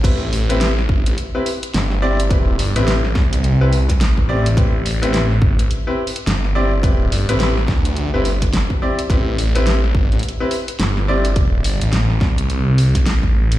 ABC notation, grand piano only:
X:1
M:4/4
L:1/16
Q:"Swing 16ths" 1/4=106
K:Am
V:1 name="Grand piano"
[CEGB] z2 [CEGB] z4 z [CEGB] z4 [CEGd] z | [CEGB] z2 [CEGB] z4 z [CEGB] z4 [CEGd] z | [CEGB] z2 [CEGB] z4 z [CEGB] z4 [CEGd] z | [CEGB] z2 [CEGB] z4 z [CEGB] z4 [CEGd] z |
[CEGB] z2 [CEGB] z4 z [CEGB] z4 [CEGd] z | z16 |]